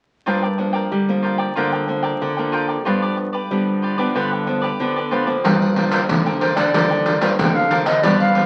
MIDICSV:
0, 0, Header, 1, 8, 480
1, 0, Start_track
1, 0, Key_signature, -2, "minor"
1, 0, Tempo, 647249
1, 198, Time_signature, 4, 2, 24, 8
1, 6273, End_track
2, 0, Start_track
2, 0, Title_t, "Flute"
2, 0, Program_c, 0, 73
2, 4750, Note_on_c, 0, 72, 74
2, 4864, Note_on_c, 0, 74, 77
2, 4875, Note_off_c, 0, 72, 0
2, 5471, Note_off_c, 0, 74, 0
2, 5475, Note_on_c, 0, 79, 94
2, 5600, Note_on_c, 0, 77, 82
2, 5611, Note_off_c, 0, 79, 0
2, 5818, Note_off_c, 0, 77, 0
2, 5823, Note_on_c, 0, 75, 77
2, 5951, Note_on_c, 0, 74, 83
2, 5963, Note_off_c, 0, 75, 0
2, 6071, Note_off_c, 0, 74, 0
2, 6076, Note_on_c, 0, 77, 83
2, 6273, Note_off_c, 0, 77, 0
2, 6273, End_track
3, 0, Start_track
3, 0, Title_t, "Cavaquinho"
3, 0, Program_c, 1, 24
3, 194, Note_on_c, 1, 65, 57
3, 198, Note_on_c, 1, 70, 57
3, 202, Note_on_c, 1, 74, 57
3, 205, Note_on_c, 1, 79, 64
3, 306, Note_off_c, 1, 65, 0
3, 307, Note_off_c, 1, 79, 0
3, 309, Note_off_c, 1, 70, 0
3, 311, Note_off_c, 1, 74, 0
3, 316, Note_on_c, 1, 79, 42
3, 322, Note_on_c, 1, 74, 37
3, 331, Note_on_c, 1, 70, 35
3, 421, Note_off_c, 1, 70, 0
3, 426, Note_off_c, 1, 74, 0
3, 427, Note_off_c, 1, 79, 0
3, 539, Note_on_c, 1, 79, 55
3, 547, Note_on_c, 1, 74, 49
3, 555, Note_on_c, 1, 70, 51
3, 900, Note_off_c, 1, 79, 0
3, 903, Note_off_c, 1, 74, 0
3, 904, Note_off_c, 1, 70, 0
3, 909, Note_on_c, 1, 65, 47
3, 913, Note_on_c, 1, 70, 43
3, 918, Note_on_c, 1, 74, 47
3, 922, Note_on_c, 1, 79, 48
3, 1014, Note_off_c, 1, 79, 0
3, 1021, Note_off_c, 1, 74, 0
3, 1023, Note_on_c, 1, 79, 53
3, 1025, Note_off_c, 1, 65, 0
3, 1027, Note_off_c, 1, 70, 0
3, 1030, Note_on_c, 1, 74, 51
3, 1037, Note_on_c, 1, 70, 46
3, 1142, Note_off_c, 1, 79, 0
3, 1145, Note_off_c, 1, 74, 0
3, 1148, Note_off_c, 1, 70, 0
3, 1152, Note_on_c, 1, 65, 54
3, 1159, Note_on_c, 1, 70, 65
3, 1162, Note_on_c, 1, 74, 62
3, 1165, Note_on_c, 1, 79, 67
3, 1266, Note_off_c, 1, 65, 0
3, 1270, Note_off_c, 1, 70, 0
3, 1270, Note_off_c, 1, 79, 0
3, 1271, Note_off_c, 1, 74, 0
3, 1279, Note_on_c, 1, 79, 45
3, 1285, Note_on_c, 1, 74, 33
3, 1292, Note_on_c, 1, 70, 35
3, 1382, Note_off_c, 1, 70, 0
3, 1386, Note_off_c, 1, 74, 0
3, 1386, Note_off_c, 1, 79, 0
3, 1502, Note_on_c, 1, 79, 59
3, 1509, Note_on_c, 1, 74, 55
3, 1515, Note_on_c, 1, 70, 56
3, 1741, Note_off_c, 1, 79, 0
3, 1745, Note_off_c, 1, 74, 0
3, 1748, Note_off_c, 1, 70, 0
3, 1754, Note_on_c, 1, 79, 47
3, 1764, Note_on_c, 1, 74, 40
3, 1770, Note_on_c, 1, 70, 35
3, 1866, Note_off_c, 1, 70, 0
3, 1867, Note_off_c, 1, 79, 0
3, 1868, Note_on_c, 1, 65, 66
3, 1872, Note_off_c, 1, 74, 0
3, 1875, Note_on_c, 1, 70, 65
3, 1880, Note_on_c, 1, 74, 71
3, 1882, Note_on_c, 1, 79, 71
3, 1977, Note_off_c, 1, 79, 0
3, 1984, Note_off_c, 1, 74, 0
3, 1985, Note_off_c, 1, 65, 0
3, 1986, Note_on_c, 1, 79, 40
3, 1988, Note_off_c, 1, 70, 0
3, 1993, Note_on_c, 1, 74, 40
3, 2000, Note_on_c, 1, 70, 31
3, 2104, Note_off_c, 1, 79, 0
3, 2107, Note_off_c, 1, 74, 0
3, 2110, Note_off_c, 1, 70, 0
3, 2114, Note_on_c, 1, 65, 62
3, 2121, Note_on_c, 1, 67, 62
3, 2125, Note_on_c, 1, 71, 63
3, 2128, Note_on_c, 1, 74, 66
3, 2227, Note_off_c, 1, 65, 0
3, 2231, Note_off_c, 1, 67, 0
3, 2231, Note_off_c, 1, 74, 0
3, 2233, Note_off_c, 1, 71, 0
3, 2240, Note_on_c, 1, 74, 43
3, 2248, Note_on_c, 1, 71, 39
3, 2256, Note_on_c, 1, 67, 41
3, 2345, Note_off_c, 1, 67, 0
3, 2349, Note_off_c, 1, 71, 0
3, 2351, Note_off_c, 1, 74, 0
3, 2468, Note_on_c, 1, 74, 58
3, 2477, Note_on_c, 1, 71, 51
3, 2480, Note_on_c, 1, 67, 47
3, 2825, Note_off_c, 1, 74, 0
3, 2829, Note_off_c, 1, 71, 0
3, 2831, Note_off_c, 1, 67, 0
3, 2834, Note_on_c, 1, 65, 46
3, 2840, Note_on_c, 1, 67, 47
3, 2843, Note_on_c, 1, 71, 51
3, 2846, Note_on_c, 1, 74, 48
3, 2940, Note_off_c, 1, 74, 0
3, 2948, Note_off_c, 1, 65, 0
3, 2948, Note_off_c, 1, 71, 0
3, 2949, Note_on_c, 1, 74, 59
3, 2951, Note_off_c, 1, 67, 0
3, 2957, Note_on_c, 1, 71, 59
3, 2963, Note_on_c, 1, 67, 50
3, 3065, Note_off_c, 1, 74, 0
3, 3069, Note_off_c, 1, 71, 0
3, 3072, Note_off_c, 1, 67, 0
3, 3076, Note_on_c, 1, 65, 62
3, 3081, Note_on_c, 1, 67, 66
3, 3086, Note_on_c, 1, 71, 71
3, 3091, Note_on_c, 1, 74, 68
3, 3189, Note_off_c, 1, 65, 0
3, 3189, Note_off_c, 1, 74, 0
3, 3191, Note_off_c, 1, 67, 0
3, 3194, Note_off_c, 1, 71, 0
3, 3198, Note_on_c, 1, 74, 39
3, 3205, Note_on_c, 1, 71, 39
3, 3211, Note_on_c, 1, 67, 36
3, 3304, Note_off_c, 1, 67, 0
3, 3307, Note_off_c, 1, 71, 0
3, 3310, Note_off_c, 1, 74, 0
3, 3422, Note_on_c, 1, 74, 62
3, 3428, Note_on_c, 1, 71, 57
3, 3437, Note_on_c, 1, 67, 54
3, 3662, Note_off_c, 1, 74, 0
3, 3665, Note_off_c, 1, 71, 0
3, 3669, Note_off_c, 1, 67, 0
3, 3679, Note_on_c, 1, 74, 41
3, 3687, Note_on_c, 1, 71, 39
3, 3692, Note_on_c, 1, 67, 36
3, 3788, Note_off_c, 1, 67, 0
3, 3790, Note_off_c, 1, 74, 0
3, 3790, Note_on_c, 1, 65, 64
3, 3791, Note_off_c, 1, 71, 0
3, 3796, Note_on_c, 1, 67, 64
3, 3800, Note_on_c, 1, 71, 71
3, 3805, Note_on_c, 1, 74, 62
3, 3895, Note_off_c, 1, 74, 0
3, 3902, Note_off_c, 1, 71, 0
3, 3904, Note_on_c, 1, 74, 38
3, 3906, Note_off_c, 1, 65, 0
3, 3909, Note_off_c, 1, 67, 0
3, 3911, Note_on_c, 1, 71, 36
3, 3919, Note_on_c, 1, 67, 34
3, 4023, Note_off_c, 1, 74, 0
3, 4026, Note_off_c, 1, 71, 0
3, 4030, Note_off_c, 1, 67, 0
3, 4034, Note_on_c, 1, 65, 55
3, 4039, Note_on_c, 1, 70, 59
3, 4044, Note_on_c, 1, 74, 63
3, 4049, Note_on_c, 1, 79, 64
3, 4265, Note_off_c, 1, 65, 0
3, 4270, Note_off_c, 1, 70, 0
3, 4273, Note_off_c, 1, 74, 0
3, 4274, Note_on_c, 1, 65, 44
3, 4275, Note_off_c, 1, 79, 0
3, 4279, Note_on_c, 1, 70, 48
3, 4283, Note_on_c, 1, 74, 46
3, 4286, Note_on_c, 1, 79, 48
3, 4382, Note_off_c, 1, 65, 0
3, 4383, Note_off_c, 1, 70, 0
3, 4388, Note_off_c, 1, 74, 0
3, 4390, Note_off_c, 1, 79, 0
3, 4390, Note_on_c, 1, 65, 64
3, 4392, Note_on_c, 1, 70, 58
3, 4397, Note_on_c, 1, 74, 61
3, 4399, Note_on_c, 1, 79, 73
3, 4462, Note_off_c, 1, 65, 0
3, 4463, Note_off_c, 1, 70, 0
3, 4465, Note_off_c, 1, 74, 0
3, 4466, Note_off_c, 1, 79, 0
3, 4641, Note_on_c, 1, 79, 43
3, 4649, Note_on_c, 1, 74, 41
3, 4655, Note_on_c, 1, 70, 37
3, 4745, Note_off_c, 1, 70, 0
3, 4748, Note_off_c, 1, 74, 0
3, 4749, Note_on_c, 1, 65, 58
3, 4751, Note_off_c, 1, 79, 0
3, 4754, Note_on_c, 1, 70, 67
3, 4757, Note_on_c, 1, 74, 69
3, 4762, Note_on_c, 1, 79, 72
3, 4856, Note_off_c, 1, 79, 0
3, 4863, Note_off_c, 1, 74, 0
3, 4865, Note_off_c, 1, 65, 0
3, 4865, Note_on_c, 1, 79, 45
3, 4867, Note_off_c, 1, 70, 0
3, 4872, Note_on_c, 1, 74, 43
3, 4878, Note_on_c, 1, 70, 36
3, 4982, Note_off_c, 1, 79, 0
3, 4986, Note_off_c, 1, 74, 0
3, 4989, Note_off_c, 1, 70, 0
3, 4997, Note_on_c, 1, 65, 65
3, 5003, Note_on_c, 1, 70, 61
3, 5008, Note_on_c, 1, 74, 71
3, 5012, Note_on_c, 1, 79, 69
3, 5109, Note_off_c, 1, 65, 0
3, 5111, Note_off_c, 1, 70, 0
3, 5113, Note_off_c, 1, 79, 0
3, 5114, Note_off_c, 1, 74, 0
3, 5122, Note_on_c, 1, 79, 43
3, 5129, Note_on_c, 1, 74, 40
3, 5135, Note_on_c, 1, 70, 33
3, 5227, Note_off_c, 1, 70, 0
3, 5231, Note_off_c, 1, 74, 0
3, 5231, Note_off_c, 1, 79, 0
3, 5231, Note_on_c, 1, 65, 40
3, 5236, Note_on_c, 1, 70, 46
3, 5240, Note_on_c, 1, 74, 48
3, 5245, Note_on_c, 1, 79, 48
3, 5338, Note_off_c, 1, 65, 0
3, 5343, Note_off_c, 1, 70, 0
3, 5344, Note_off_c, 1, 74, 0
3, 5347, Note_off_c, 1, 79, 0
3, 5347, Note_on_c, 1, 65, 64
3, 5352, Note_on_c, 1, 70, 62
3, 5353, Note_on_c, 1, 74, 68
3, 5356, Note_on_c, 1, 79, 71
3, 5420, Note_off_c, 1, 65, 0
3, 5422, Note_off_c, 1, 70, 0
3, 5423, Note_off_c, 1, 74, 0
3, 5424, Note_off_c, 1, 79, 0
3, 5708, Note_on_c, 1, 65, 59
3, 5715, Note_on_c, 1, 70, 67
3, 5719, Note_on_c, 1, 74, 75
3, 5724, Note_on_c, 1, 79, 66
3, 5820, Note_off_c, 1, 79, 0
3, 5823, Note_off_c, 1, 65, 0
3, 5827, Note_off_c, 1, 70, 0
3, 5829, Note_off_c, 1, 74, 0
3, 5829, Note_on_c, 1, 79, 41
3, 5836, Note_on_c, 1, 74, 37
3, 5842, Note_on_c, 1, 70, 34
3, 5944, Note_off_c, 1, 79, 0
3, 5947, Note_off_c, 1, 74, 0
3, 5950, Note_off_c, 1, 70, 0
3, 5958, Note_on_c, 1, 65, 59
3, 5964, Note_on_c, 1, 67, 61
3, 5970, Note_on_c, 1, 71, 67
3, 5970, Note_on_c, 1, 74, 63
3, 6186, Note_off_c, 1, 65, 0
3, 6191, Note_off_c, 1, 67, 0
3, 6194, Note_off_c, 1, 71, 0
3, 6194, Note_off_c, 1, 74, 0
3, 6195, Note_on_c, 1, 65, 46
3, 6200, Note_on_c, 1, 67, 46
3, 6205, Note_on_c, 1, 71, 53
3, 6208, Note_on_c, 1, 74, 56
3, 6273, Note_off_c, 1, 65, 0
3, 6273, Note_off_c, 1, 67, 0
3, 6273, Note_off_c, 1, 71, 0
3, 6273, Note_off_c, 1, 74, 0
3, 6273, End_track
4, 0, Start_track
4, 0, Title_t, "Nylon-string guitar"
4, 0, Program_c, 2, 24
4, 200, Note_on_c, 2, 43, 45
4, 201, Note_on_c, 2, 53, 48
4, 203, Note_on_c, 2, 58, 53
4, 207, Note_on_c, 2, 62, 52
4, 340, Note_off_c, 2, 53, 0
4, 342, Note_off_c, 2, 58, 0
4, 343, Note_off_c, 2, 62, 0
4, 434, Note_on_c, 2, 53, 48
4, 437, Note_on_c, 2, 58, 46
4, 440, Note_on_c, 2, 62, 48
4, 656, Note_off_c, 2, 43, 0
4, 662, Note_off_c, 2, 53, 0
4, 663, Note_off_c, 2, 58, 0
4, 664, Note_off_c, 2, 62, 0
4, 679, Note_on_c, 2, 50, 44
4, 806, Note_on_c, 2, 53, 55
4, 808, Note_on_c, 2, 58, 56
4, 812, Note_on_c, 2, 62, 58
4, 1124, Note_off_c, 2, 53, 0
4, 1126, Note_off_c, 2, 58, 0
4, 1127, Note_off_c, 2, 62, 0
4, 1136, Note_off_c, 2, 50, 0
4, 1157, Note_on_c, 2, 43, 47
4, 1161, Note_on_c, 2, 53, 46
4, 1165, Note_on_c, 2, 62, 49
4, 1167, Note_on_c, 2, 58, 48
4, 1361, Note_off_c, 2, 53, 0
4, 1363, Note_off_c, 2, 58, 0
4, 1364, Note_off_c, 2, 62, 0
4, 1395, Note_on_c, 2, 53, 44
4, 1399, Note_on_c, 2, 58, 47
4, 1401, Note_on_c, 2, 62, 53
4, 1616, Note_off_c, 2, 43, 0
4, 1643, Note_on_c, 2, 50, 53
4, 1719, Note_off_c, 2, 53, 0
4, 1720, Note_off_c, 2, 58, 0
4, 1722, Note_off_c, 2, 62, 0
4, 1766, Note_on_c, 2, 53, 48
4, 1768, Note_on_c, 2, 58, 52
4, 1774, Note_on_c, 2, 62, 60
4, 2085, Note_off_c, 2, 53, 0
4, 2086, Note_off_c, 2, 58, 0
4, 2087, Note_off_c, 2, 62, 0
4, 2098, Note_off_c, 2, 50, 0
4, 2121, Note_on_c, 2, 43, 52
4, 2124, Note_on_c, 2, 53, 48
4, 2125, Note_on_c, 2, 59, 52
4, 2128, Note_on_c, 2, 62, 53
4, 2430, Note_off_c, 2, 53, 0
4, 2432, Note_off_c, 2, 59, 0
4, 2434, Note_off_c, 2, 62, 0
4, 2577, Note_off_c, 2, 43, 0
4, 2601, Note_on_c, 2, 50, 47
4, 2602, Note_on_c, 2, 53, 42
4, 2606, Note_on_c, 2, 59, 44
4, 2608, Note_on_c, 2, 62, 51
4, 2923, Note_off_c, 2, 53, 0
4, 2924, Note_off_c, 2, 59, 0
4, 2926, Note_off_c, 2, 62, 0
4, 2950, Note_on_c, 2, 53, 54
4, 2954, Note_on_c, 2, 59, 59
4, 2956, Note_on_c, 2, 62, 62
4, 3057, Note_off_c, 2, 50, 0
4, 3080, Note_on_c, 2, 43, 50
4, 3277, Note_off_c, 2, 53, 0
4, 3278, Note_off_c, 2, 59, 0
4, 3280, Note_off_c, 2, 62, 0
4, 3314, Note_on_c, 2, 53, 49
4, 3318, Note_on_c, 2, 59, 48
4, 3320, Note_on_c, 2, 62, 57
4, 3459, Note_off_c, 2, 53, 0
4, 3460, Note_off_c, 2, 59, 0
4, 3461, Note_off_c, 2, 62, 0
4, 3536, Note_off_c, 2, 43, 0
4, 3557, Note_on_c, 2, 50, 53
4, 3560, Note_on_c, 2, 53, 53
4, 3562, Note_on_c, 2, 59, 53
4, 3566, Note_on_c, 2, 62, 59
4, 3701, Note_off_c, 2, 53, 0
4, 3702, Note_off_c, 2, 59, 0
4, 3704, Note_off_c, 2, 62, 0
4, 3794, Note_on_c, 2, 53, 49
4, 3797, Note_on_c, 2, 59, 51
4, 3800, Note_on_c, 2, 62, 54
4, 3879, Note_off_c, 2, 53, 0
4, 3880, Note_off_c, 2, 59, 0
4, 3882, Note_off_c, 2, 62, 0
4, 3907, Note_on_c, 2, 53, 58
4, 3911, Note_on_c, 2, 58, 57
4, 3912, Note_on_c, 2, 62, 58
4, 4015, Note_off_c, 2, 50, 0
4, 4039, Note_on_c, 2, 43, 52
4, 4263, Note_off_c, 2, 53, 0
4, 4266, Note_off_c, 2, 58, 0
4, 4269, Note_off_c, 2, 62, 0
4, 4271, Note_on_c, 2, 53, 51
4, 4277, Note_on_c, 2, 58, 52
4, 4277, Note_on_c, 2, 62, 49
4, 4495, Note_off_c, 2, 43, 0
4, 4516, Note_on_c, 2, 50, 46
4, 4597, Note_off_c, 2, 53, 0
4, 4599, Note_off_c, 2, 58, 0
4, 4600, Note_off_c, 2, 62, 0
4, 4641, Note_on_c, 2, 53, 54
4, 4644, Note_on_c, 2, 58, 60
4, 4648, Note_on_c, 2, 62, 62
4, 4842, Note_off_c, 2, 53, 0
4, 4844, Note_off_c, 2, 58, 0
4, 4845, Note_off_c, 2, 62, 0
4, 4868, Note_on_c, 2, 53, 58
4, 4871, Note_on_c, 2, 58, 56
4, 4875, Note_on_c, 2, 62, 61
4, 4956, Note_off_c, 2, 53, 0
4, 4956, Note_off_c, 2, 58, 0
4, 4959, Note_off_c, 2, 62, 0
4, 4974, Note_off_c, 2, 50, 0
4, 5000, Note_on_c, 2, 43, 52
4, 5002, Note_on_c, 2, 53, 44
4, 5005, Note_on_c, 2, 58, 45
4, 5005, Note_on_c, 2, 62, 57
4, 5225, Note_off_c, 2, 53, 0
4, 5226, Note_off_c, 2, 58, 0
4, 5227, Note_off_c, 2, 62, 0
4, 5350, Note_on_c, 2, 53, 57
4, 5353, Note_on_c, 2, 58, 59
4, 5356, Note_on_c, 2, 62, 60
4, 5455, Note_off_c, 2, 43, 0
4, 5478, Note_on_c, 2, 50, 55
4, 5675, Note_off_c, 2, 53, 0
4, 5677, Note_off_c, 2, 58, 0
4, 5678, Note_off_c, 2, 62, 0
4, 5713, Note_on_c, 2, 53, 51
4, 5716, Note_on_c, 2, 58, 48
4, 5720, Note_on_c, 2, 62, 51
4, 5917, Note_off_c, 2, 53, 0
4, 5919, Note_off_c, 2, 58, 0
4, 5920, Note_off_c, 2, 62, 0
4, 5934, Note_off_c, 2, 50, 0
4, 5957, Note_on_c, 2, 43, 57
4, 5958, Note_on_c, 2, 53, 49
4, 5964, Note_on_c, 2, 59, 48
4, 5964, Note_on_c, 2, 62, 63
4, 6159, Note_off_c, 2, 53, 0
4, 6160, Note_off_c, 2, 59, 0
4, 6162, Note_off_c, 2, 62, 0
4, 6193, Note_on_c, 2, 53, 52
4, 6196, Note_on_c, 2, 59, 49
4, 6200, Note_on_c, 2, 62, 54
4, 6273, Note_off_c, 2, 43, 0
4, 6273, Note_off_c, 2, 53, 0
4, 6273, Note_off_c, 2, 59, 0
4, 6273, Note_off_c, 2, 62, 0
4, 6273, End_track
5, 0, Start_track
5, 0, Title_t, "Nylon-string guitar"
5, 0, Program_c, 3, 24
5, 679, Note_on_c, 3, 55, 70
5, 1088, Note_off_c, 3, 55, 0
5, 1164, Note_on_c, 3, 50, 72
5, 1570, Note_off_c, 3, 50, 0
5, 2602, Note_on_c, 3, 55, 75
5, 3010, Note_off_c, 3, 55, 0
5, 3081, Note_on_c, 3, 50, 76
5, 3489, Note_off_c, 3, 50, 0
5, 4870, Note_on_c, 3, 50, 88
5, 4976, Note_off_c, 3, 50, 0
5, 5001, Note_on_c, 3, 50, 86
5, 5306, Note_off_c, 3, 50, 0
5, 5351, Note_on_c, 3, 43, 71
5, 5456, Note_off_c, 3, 43, 0
5, 5830, Note_on_c, 3, 50, 77
5, 5936, Note_off_c, 3, 50, 0
5, 6273, End_track
6, 0, Start_track
6, 0, Title_t, "Muted cavaquinho strokes"
6, 429, Note_on_c, 9, 29, 37
6, 503, Note_off_c, 9, 29, 0
6, 1389, Note_on_c, 9, 29, 30
6, 1463, Note_off_c, 9, 29, 0
6, 2353, Note_on_c, 9, 29, 35
6, 2427, Note_off_c, 9, 29, 0
6, 3310, Note_on_c, 9, 29, 35
6, 3384, Note_off_c, 9, 29, 0
6, 6273, End_track
7, 0, Start_track
7, 0, Title_t, "Pandeiro"
7, 4040, Note_on_c, 9, 54, 70
7, 4115, Note_off_c, 9, 54, 0
7, 4166, Note_on_c, 9, 54, 33
7, 4240, Note_off_c, 9, 54, 0
7, 4273, Note_on_c, 9, 54, 52
7, 4348, Note_off_c, 9, 54, 0
7, 4387, Note_on_c, 9, 54, 66
7, 4461, Note_off_c, 9, 54, 0
7, 4518, Note_on_c, 9, 54, 75
7, 4592, Note_off_c, 9, 54, 0
7, 4643, Note_on_c, 9, 54, 31
7, 4717, Note_off_c, 9, 54, 0
7, 4755, Note_on_c, 9, 54, 50
7, 4829, Note_off_c, 9, 54, 0
7, 4871, Note_on_c, 9, 54, 68
7, 4945, Note_off_c, 9, 54, 0
7, 5000, Note_on_c, 9, 54, 74
7, 5074, Note_off_c, 9, 54, 0
7, 5123, Note_on_c, 9, 54, 27
7, 5198, Note_off_c, 9, 54, 0
7, 5234, Note_on_c, 9, 54, 54
7, 5308, Note_off_c, 9, 54, 0
7, 5351, Note_on_c, 9, 54, 58
7, 5425, Note_off_c, 9, 54, 0
7, 5481, Note_on_c, 9, 54, 75
7, 5555, Note_off_c, 9, 54, 0
7, 5606, Note_on_c, 9, 54, 30
7, 5680, Note_off_c, 9, 54, 0
7, 5716, Note_on_c, 9, 54, 51
7, 5790, Note_off_c, 9, 54, 0
7, 5829, Note_on_c, 9, 54, 64
7, 5904, Note_off_c, 9, 54, 0
7, 5958, Note_on_c, 9, 54, 73
7, 6032, Note_off_c, 9, 54, 0
7, 6081, Note_on_c, 9, 54, 31
7, 6155, Note_off_c, 9, 54, 0
7, 6192, Note_on_c, 9, 54, 50
7, 6266, Note_off_c, 9, 54, 0
7, 6273, End_track
8, 0, Start_track
8, 0, Title_t, "Drums"
8, 4040, Note_on_c, 9, 82, 66
8, 4040, Note_on_c, 9, 87, 53
8, 4115, Note_off_c, 9, 82, 0
8, 4115, Note_off_c, 9, 87, 0
8, 4166, Note_on_c, 9, 82, 30
8, 4240, Note_off_c, 9, 82, 0
8, 4387, Note_on_c, 9, 82, 82
8, 4387, Note_on_c, 9, 87, 31
8, 4461, Note_off_c, 9, 82, 0
8, 4461, Note_off_c, 9, 87, 0
8, 4518, Note_on_c, 9, 82, 72
8, 4518, Note_on_c, 9, 87, 88
8, 4592, Note_off_c, 9, 82, 0
8, 4592, Note_off_c, 9, 87, 0
8, 4643, Note_on_c, 9, 82, 30
8, 4717, Note_off_c, 9, 82, 0
8, 4871, Note_on_c, 9, 82, 73
8, 4871, Note_on_c, 9, 87, 33
8, 4945, Note_off_c, 9, 82, 0
8, 4945, Note_off_c, 9, 87, 0
8, 5000, Note_on_c, 9, 82, 77
8, 5000, Note_on_c, 9, 87, 53
8, 5074, Note_off_c, 9, 82, 0
8, 5074, Note_off_c, 9, 87, 0
8, 5123, Note_on_c, 9, 82, 27
8, 5198, Note_off_c, 9, 82, 0
8, 5234, Note_on_c, 9, 82, 59
8, 5308, Note_off_c, 9, 82, 0
8, 5351, Note_on_c, 9, 82, 71
8, 5351, Note_on_c, 9, 87, 29
8, 5425, Note_off_c, 9, 82, 0
8, 5425, Note_off_c, 9, 87, 0
8, 5481, Note_on_c, 9, 82, 79
8, 5481, Note_on_c, 9, 87, 98
8, 5555, Note_off_c, 9, 82, 0
8, 5555, Note_off_c, 9, 87, 0
8, 5606, Note_on_c, 9, 82, 31
8, 5680, Note_off_c, 9, 82, 0
8, 5716, Note_on_c, 9, 82, 65
8, 5790, Note_off_c, 9, 82, 0
8, 5829, Note_on_c, 9, 82, 77
8, 5829, Note_on_c, 9, 87, 33
8, 5904, Note_off_c, 9, 82, 0
8, 5904, Note_off_c, 9, 87, 0
8, 5958, Note_on_c, 9, 82, 74
8, 5958, Note_on_c, 9, 87, 51
8, 6032, Note_off_c, 9, 82, 0
8, 6032, Note_off_c, 9, 87, 0
8, 6081, Note_on_c, 9, 82, 29
8, 6155, Note_off_c, 9, 82, 0
8, 6273, End_track
0, 0, End_of_file